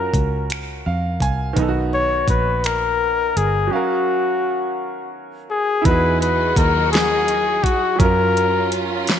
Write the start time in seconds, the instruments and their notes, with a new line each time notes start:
Already playing: fingered electric bass F#2, grand piano C#4 F4 F#4 A#4, flugelhorn A#4
0.14 fingered electric bass C#2, kick, closed hi-hat
0.50 finger snap, closed hi-hat
0.86 fingered electric bass F2, grand piano F5
1.20 fingered electric bass C2, grand piano G#5, kick, closed hi-hat
1.53 grand piano D#3 B3, kick, closed hi-hat
1.57 fingered electric bass B1, grand piano D#4
1.62 grand piano A4
1.69 grand piano F#4
1.94 flugelhorn C#5
2.28 fingered electric bass A#1, flugelhorn B4, kick, closed hi-hat
2.64 flugelhorn A#4, finger snap, closed hi-hat
3.37 fingered electric bass G1, flugelhorn G#4, closed hi-hat
3.67 grand piano F#3 C#4
3.72 flugelhorn F#4, grand piano A#4 F5
5.50 flugelhorn G#4
5.82 string section F#3 F#4 G#4 D#5, grand piano D#4 E4, kick, closed hi-hat
5.86 fingered electric bass E2, grand piano F#4, flugelhorn B4
5.91 grand piano G#4
6.21 flugelhorn B4, closed hi-hat
6.57 fingered electric bass D#2, flugelhorn A#4, kick, closed hi-hat
6.92 flugelhorn G#4, snare, closed hi-hat
7.28 closed hi-hat
7.64 fingered electric bass G2, flugelhorn F#4, kick, closed hi-hat
7.96 grand piano F#3 C#4, string section F4, flugelhorn A#4
8.00 fingered electric bass F#2, string section F#3 C#4, grand piano F4, kick, closed hi-hat
8.04 grand piano A#4
8.37 closed hi-hat
8.72 closed hi-hat
9.07 snare, closed hi-hat